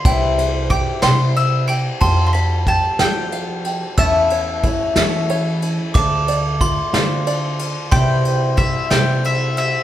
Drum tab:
RD |xxxxxx|xxxxxx|xxxxxx|xxxxxx|
SD |---o--|---o--|---o--|---o--|
BD |o-o---|o-o---|o-o---|o-o---|

RD |xxxxxx|
SD |---o--|
BD |o-o---|